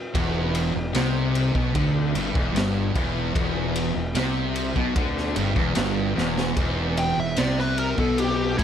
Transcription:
0.14 0.71 E1 loud
0.14 0.73 E2 loud
0.14 kick loud
0.14 ride loud
0.55 ride medium
0.74 0.93 E1 medium
0.74 0.95 E2 medium
0.93 1.51 C2 medium
0.93 1.52 C3 loud
0.93 snare loud
0.93 ride loud
1.35 ride medium
1.52 1.74 B1 medium
1.52 1.73 B2 loud
1.52 kick loud
1.73 2.13 D2 loud
1.73 2.13 D3 loud
1.73 kick loud
1.73 ride loud
2.15 2.34 G1 loud
2.15 2.33 G2 loud
2.15 ride medium
2.33 2.54 E1 loud
2.33 2.53 E2 loud
2.33 kick loud
2.54 2.93 G1 loud
2.54 2.94 G2 loud
2.54 snare loud
2.54 ride loud
2.94 3.33 E1 medium
2.94 3.33 E2 loud
2.94 kick loud
2.94 ride medium
3.34 3.92 E1 loud
3.34 3.94 E2 loud
3.34 kick loud
3.34 ride loud
3.76 ride medium
3.95 4.14 E1 medium
3.95 4.17 E2 medium
4.15 4.72 C2 medium
4.15 4.75 C3 loud
4.15 snare loud
4.15 ride medium
4.56 ride medium
4.76 4.95 B1 medium
4.76 4.96 B2 loud
4.76 kick loud
4.96 5.34 D2 loud
4.96 5.36 D3 loud
4.96 kick loud
4.96 ride loud
5.18 snare soft
5.36 5.55 G1 loud
5.36 5.56 G2 loud
5.36 ride medium
5.56 5.75 E1 medium
5.56 5.76 E2 loud
5.56 kick loud
5.75 6.15 G1 loud
5.75 6.17 G2 loud
5.75 snare loud
5.75 ride loud
6.17 6.55 E1 loud
6.17 6.55 E2 loud
6.17 snare medium
6.38 snare medium
6.56 7.14 E1 medium
6.56 7.16 E2 loud
6.56 kick loud
6.56 ride loud
6.97 7.18 G5 medium
6.97 ride medium
7.17 7.37 E1 medium
7.17 7.38 E2 medium
7.17 7.38 E5 medium
7.36 7.95 C2 medium
7.36 7.97 C3 loud
7.36 7.58 D5 medium
7.36 snare loud
7.36 ride loud
7.59 7.79 B4 medium
7.59 snare soft
7.78 7.99 A#4 medium
7.78 ride medium
7.98 8.55 B1 medium
7.98 8.58 B2 loud
7.98 8.19 A4 medium
7.98 kick loud
8.18 8.58 G4 loud
8.18 ride loud
8.58 8.63 A1 medium
8.58 8.63 A2 loud
8.58 8.63 E4 medium
8.58 kick loud
8.58 ride medium

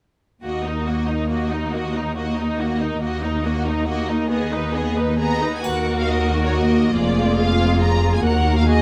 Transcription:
0.43 2.98 D#2 soft
0.43 0.64 A#3 soft
0.43 0.64 F#4 soft
0.43 0.65 D#5 soft
0.65 0.87 D#4 soft
0.65 0.87 A#4 soft
0.85 1.09 A#3 soft
0.85 1.08 F#4 soft
0.85 1.09 D#5 soft
1.08 1.30 D#4 soft
1.08 1.31 A#4 soft
1.30 1.51 A#3 soft
1.30 1.51 F#4 soft
1.30 1.51 D#5 soft
1.51 1.74 D#4 soft
1.51 1.75 A#4 soft
1.74 1.95 A#3 soft
1.74 1.96 F#4 soft
1.74 1.96 D#5 soft
1.95 2.17 D#4 soft
1.95 2.17 A#4 soft
2.16 2.36 A#3 soft
2.16 2.37 F#4 soft
2.16 2.37 D#5 soft
2.38 2.60 D#4 soft
2.38 2.61 A#4 soft
2.59 2.81 A#3 soft
2.59 2.81 F#4 soft
2.59 2.81 D#5 soft
2.81 3.02 D#4 soft
2.81 3.02 A#4 soft
3.01 5.40 D#2 soft
3.01 3.22 A#3 soft
3.01 3.22 F#4 soft
3.01 3.22 D#5 soft
3.23 3.45 D#4 soft
3.23 3.45 A#4 soft
3.45 3.66 A#3 soft
3.45 3.67 F#4 soft
3.45 3.67 D#5 soft
3.66 3.88 D#4 soft
3.66 3.87 A#4 soft
3.86 4.07 A#3 soft
3.86 4.08 F#4 soft
3.86 4.07 D#5 soft
4.09 4.30 D#4 soft
4.09 4.31 D#4 soft
4.09 4.30 A#4 soft
4.30 4.50 B3 soft
4.30 4.50 G#4 soft
4.30 4.51 D#5 soft
4.52 4.74 D#4 soft
4.52 4.74 B4 soft
4.52 4.75 B4 soft
4.74 4.97 B3 soft
4.74 4.96 G#4 soft
4.74 4.97 D#5 soft
4.97 5.19 D#4 soft
4.97 5.19 B4 soft
5.19 5.41 B3 soft
5.19 5.41 G#4 soft
5.19 5.41 D#5 soft
5.19 5.52 A#5 medium
5.41 5.64 D#4 soft
5.41 5.64 B4 soft
5.41 5.65 B4 soft
5.55 5.66 G#5 soft
5.64 6.91 D#2 soft
5.64 6.92 D#2 soft
5.64 8.21 A#3 soft
5.64 6.91 F#4 soft
5.64 6.91 A#4 soft
5.64 5.97 F#5 medium
5.64 triangle soft
6.00 6.09 F5 soft
6.09 6.42 D#5 soft
6.44 6.53 C#5 soft
6.53 6.96 D#5 soft
6.95 8.22 F1 soft
6.95 8.22 F2 soft
6.95 8.26 F4 soft
6.95 8.21 G#4 soft
6.95 7.38 D5 medium
7.40 7.82 F5 medium
7.83 8.14 A#5 medium
8.15 8.25 G#5 medium
8.24 8.82 D#2 soft
8.24 8.82 A#3 soft
8.24 8.82 F#4 soft
8.24 8.66 A#4 soft
8.24 8.56 F#5 medium
8.57 8.68 F5 soft
8.67 8.82 G#4 soft
8.67 8.82 D#5 medium

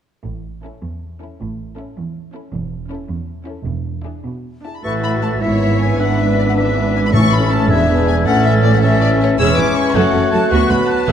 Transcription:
0.24 0.61 A1 soft
0.24 0.70 A2 soft
0.64 0.78 C#4 soft
0.64 0.78 E4 soft
0.64 0.78 A4 soft
0.83 1.28 E2 soft
1.21 1.35 C#4 soft
1.21 1.35 E4 soft
1.21 1.35 A4 soft
1.40 1.76 A1 soft
1.40 1.85 A2 soft
1.78 1.92 C#4 soft
1.78 1.92 E4 soft
1.78 1.92 A4 soft
1.98 2.42 E2 soft
2.34 2.48 C#4 soft
2.34 2.48 E4 soft
2.34 2.48 A4 soft
2.53 2.88 E1 soft
2.53 2.97 E2 medium
2.90 3.04 C#4 soft
2.90 3.04 E4 soft
2.90 3.04 A4 soft
3.09 3.54 E2 medium
3.46 3.61 C#4 soft
3.46 3.61 E4 soft
3.46 3.61 A4 soft
3.66 4.02 E1 medium
3.66 4.12 E2 medium
4.05 4.19 D4 soft
4.05 4.19 E4 soft
4.05 4.19 G#4 soft
4.24 4.71 B2 soft
4.64 4.79 D4 soft
4.64 4.79 E4 soft
4.64 4.79 G#4 soft
4.64 4.73 A5 soft
4.75 4.84 B5 soft
4.83 5.37 A1 medium
4.83 5.38 A2 medium
4.83 5.38 E3 medium
4.83 5.37 A3 medium
4.83 5.95 E4 medium
4.83 5.38 E4 medium
4.83 5.38 F#4 medium
4.83 5.38 A4 soft
4.83 5.38 E5 medium
4.83 4.91 C#6 medium
4.83 5.43 A6 medium
5.03 5.11 B5 medium
5.22 5.30 A5 medium
5.41 5.98 G#1 medium
5.41 5.98 G#2 medium
5.41 5.98 E3 medium
5.41 7.13 B3 medium
5.41 5.99 E4 medium
5.41 6.01 E4 medium
5.41 5.98 C#5 medium
5.41 5.95 C#5 medium
5.41 5.79 E5 medium
5.41 5.98 E5 medium
5.41 5.99 B6 medium
5.80 5.99 G#5 medium
5.99 7.11 G#1 medium
5.99 7.11 G#2 medium
5.99 6.55 E3 medium
5.99 7.11 D4 medium
5.99 7.13 D4 medium
5.99 6.56 D4 medium
5.99 6.56 B4 medium
5.99 7.13 B4 medium
5.99 6.56 E5 medium
5.99 6.18 F#5 medium
5.99 6.55 B6 medium
6.19 6.38 E5 medium
6.38 6.42 D5 medium
6.49 6.52 F#5 medium
6.57 7.12 E3 medium
6.57 7.15 D4 medium
6.57 7.12 B4 medium
6.57 7.12 E5 medium
6.57 6.94 E5 medium
6.57 7.15 B6 medium
6.95 6.99 G#5 medium
7.05 7.09 B5 medium
7.13 7.70 A1 medium
7.13 7.70 A2 medium
7.13 7.66 A2 medium
7.13 7.69 E3 medium
7.13 7.69 A3 medium
7.13 7.70 C#4 medium
7.13 7.72 C#4 medium
7.13 7.70 A4 medium
7.13 7.69 E5 medium
7.13 7.31 C#6 loud
7.13 7.72 A6 medium
7.32 7.51 B5 medium
7.51 7.70 A5 medium
7.69 8.26 E1 medium
7.69 8.26 E2 medium
7.69 8.25 E3 medium
7.69 8.27 G#3 medium
7.69 8.26 B3 medium
7.69 8.26 D4 medium
7.69 8.26 G#4 medium
7.69 8.25 B4 medium
7.69 8.25 E5 medium
7.69 8.07 E5 medium
7.69 8.28 G#6 medium
8.07 8.15 G#5 medium
8.25 9.39 A1 medium
8.25 9.39 A2 medium
8.25 8.82 E3 medium
8.25 9.39 A3 medium
8.25 8.81 C#4 medium
8.25 8.82 C#4 medium
8.25 10.48 C#4 medium
8.25 8.82 A4 medium
8.25 8.82 E5 medium
8.25 8.44 F#5 loud
8.25 8.82 A6 medium
8.44 8.52 E5 medium
8.63 8.73 D5 medium
8.73 8.77 F#5 medium
8.82 9.38 E3 medium
8.82 9.38 C#4 medium
8.82 9.38 A4 medium
8.82 9.02 C#5 medium
8.82 9.19 E5 medium
8.82 9.38 E5 medium
8.82 9.38 A6 medium
9.02 9.09 D5 medium
9.21 9.29 C#5 medium
9.38 9.47 E1 medium
9.38 9.47 E2 loud
9.38 9.92 E3 medium
9.38 9.94 G#3 medium
9.38 9.57 C#4 medium
9.38 9.97 C#4 medium
9.38 9.56 G#4 medium
9.38 9.95 B4 medium
9.38 10.53 C#5 medium
9.38 9.56 E6 loud
9.38 9.97 G#6 medium
9.57 9.66 E1 medium
9.57 9.66 E2 medium
9.57 9.66 E3 medium
9.57 9.65 C#4 medium
9.57 9.76 D6 loud
9.75 9.95 C#6 loud
9.94 10.03 F#1 medium
9.94 10.03 F#2 medium
9.94 10.53 A3 medium
9.94 10.52 A3 medium
9.94 10.13 C#4 medium
9.94 11.11 F#4 medium
9.94 10.13 A4 medium
9.94 10.52 A4 medium
9.94 10.32 F#5 medium
9.94 11.10 F#6 medium
10.14 10.22 F#1 medium
10.14 10.21 F#2 medium
10.14 10.21 F#3 medium
10.14 10.22 C#4 medium
10.32 10.40 F#1 medium
10.32 10.40 F#2 medium
10.32 10.40 A3 medium
10.32 10.40 F#4 medium
10.32 10.51 A5 medium
10.51 10.59 D2 medium
10.51 11.09 F#3 medium
10.51 10.68 B3 medium
10.51 11.12 B3 medium
10.51 10.69 F#4 medium
10.51 11.08 F#4 medium
10.51 11.12 B4 medium
10.51 10.70 C#6 loud
10.70 10.78 D2 medium
10.70 10.79 D2 medium
10.70 10.78 D3 medium
10.70 10.78 B3 medium
10.70 10.90 B5 medium
10.89 11.09 A5 medium
11.08 11.12 E1 medium
11.08 11.12 E2 medium
11.08 11.12 B3 medium
11.08 11.12 G#4 medium
11.08 11.12 E5 medium
11.08 11.12 E6 medium

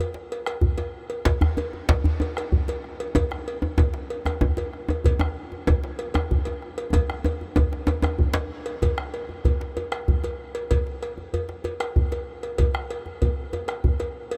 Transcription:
0.01 cowbell medium
0.14 djembe slap medium
0.32 cowbell soft
0.46 bombo rim medium
0.46 cowbell medium
0.61 bombo low loud
0.61 djembe bass medium
0.78 cowbell soft
0.78 djembe slap medium
0.78 djembe tone medium
1.10 cowbell medium
1.10 djembe slap soft
1.25 bombo low loud
1.25 cowbell medium
1.25 djembe slap loud
1.25 djembe bass medium
1.41 bombo rim medium
1.41 djembe slap medium
1.41 djembe bass medium
1.57 cowbell medium
1.57 djembe tone medium
1.73 djembe tone medium
1.89 bombo rim soft
1.89 bombo low loud
1.89 cowbell medium
1.89 djembe slap loud
1.89 djembe bass medium
2.04 bombo rim soft
2.04 djembe slap medium
2.04 djembe bass medium
2.20 cowbell medium
2.20 djembe tone medium
2.37 bombo rim medium
2.37 cowbell medium
2.52 bombo low loud
2.52 djembe bass medium
2.68 cowbell medium
2.68 djembe slap medium
2.68 djembe tone medium
2.84 bombo rim soft
2.84 djembe slap soft
3.00 cowbell medium
3.15 bombo low medium
3.15 cowbell medium
3.15 djembe tone loud
3.15 djembe bass medium
3.31 bombo rim medium
3.31 djembe slap medium
3.48 cowbell medium
3.62 djembe tone medium
3.78 bombo rim soft
3.78 bombo low loud
3.78 cowbell soft
3.78 djembe tone loud
3.78 djembe bass medium
3.94 bombo rim soft
3.94 djembe slap medium
4.10 cowbell soft
4.25 bombo rim medium
4.25 cowbell medium
4.25 djembe tone medium
4.41 bombo low loud
4.41 djembe tone loud
4.41 djembe bass medium
4.57 cowbell soft
4.57 djembe slap medium
4.57 djembe tone medium
4.73 bombo rim soft
4.73 djembe slap soft
4.89 cowbell soft
4.89 djembe tone medium
5.04 bombo low loud
5.04 cowbell medium
5.04 djembe bass medium
5.19 bombo rim medium
5.19 djembe slap soft
5.19 djembe tone loud
5.52 djembe tone medium
5.67 bombo rim soft
5.67 bombo low loud
5.67 cowbell medium
5.67 djembe tone loud
5.67 djembe bass medium
5.84 bombo rim soft
5.84 djembe slap medium
5.99 cowbell medium
6.14 bombo rim medium
6.14 cowbell medium
6.14 djembe tone loud
6.31 bombo low loud
6.31 djembe bass medium
6.45 cowbell soft
6.45 djembe slap medium
6.45 djembe tone medium
6.62 bombo rim soft
6.62 djembe slap soft
6.78 cowbell medium
6.93 bombo rim soft
6.93 bombo low medium
6.93 cowbell medium
6.93 djembe slap soft
6.93 djembe tone loud
6.93 djembe bass medium
7.10 bombo rim medium
7.10 djembe slap medium
7.24 cowbell soft
7.24 djembe slap soft
7.24 djembe tone medium
7.41 djembe slap soft
7.41 djembe tone medium
7.56 bombo low loud
7.56 cowbell medium
7.56 djembe tone loud
7.56 djembe bass medium
7.73 bombo rim soft
7.73 djembe slap medium
7.87 bombo rim soft
7.87 cowbell medium
7.87 djembe tone loud
8.02 bombo rim medium
8.02 cowbell medium
8.02 djembe slap soft
8.02 djembe tone loud
8.19 bombo low loud
8.19 djembe bass medium
8.34 bombo rim soft
8.34 cowbell medium
8.34 djembe slap loud
8.34 djembe slap medium
8.34 djembe tone medium
8.66 cowbell medium
8.82 bombo low loud
8.82 cowbell medium
8.82 djembe tone medium
8.82 djembe bass medium
8.98 bombo rim medium
8.98 djembe slap soft
9.14 bombo rim soft
9.14 cowbell soft
9.29 djembe slap soft
9.29 djembe tone soft
9.45 bombo low loud
9.45 cowbell soft
9.45 djembe bass medium
9.61 bombo rim soft
9.61 djembe slap medium
9.77 cowbell soft
9.77 djembe tone medium
9.92 bombo rim medium
9.92 cowbell medium
10.08 bombo low loud
10.08 djembe bass medium
10.24 cowbell soft
10.24 djembe slap medium
10.24 djembe tone medium
10.55 cowbell medium
10.71 bombo low loud
10.71 cowbell medium
10.71 djembe tone medium
10.71 djembe bass medium
10.87 djembe slap soft
11.03 bombo rim soft
11.03 cowbell medium
11.18 djembe slap soft
11.18 djembe tone soft
11.34 cowbell medium
11.34 djembe bass medium
11.49 bombo rim soft
11.49 djembe slap medium
11.64 cowbell medium
11.64 djembe tone medium
11.80 bombo rim medium
11.80 cowbell medium
11.96 bombo low loud
11.96 djembe bass medium
12.12 cowbell soft
12.12 djembe slap medium
12.12 djembe tone medium
12.43 cowbell soft
12.58 bombo low loud
12.58 cowbell medium
12.58 djembe tone medium
12.58 djembe bass medium
12.74 bombo rim medium
12.74 djembe slap soft
12.90 bombo rim soft
12.90 cowbell medium
13.06 djembe slap soft
13.06 djembe tone medium
13.22 bombo low loud
13.22 cowbell medium
13.22 djembe bass medium
13.53 cowbell medium
13.53 djembe tone medium
13.68 bombo rim medium
13.68 cowbell medium
13.84 bombo low loud
13.84 djembe bass medium
14.00 cowbell medium
14.00 djembe slap medium
14.00 djembe tone medium
14.31 cowbell medium

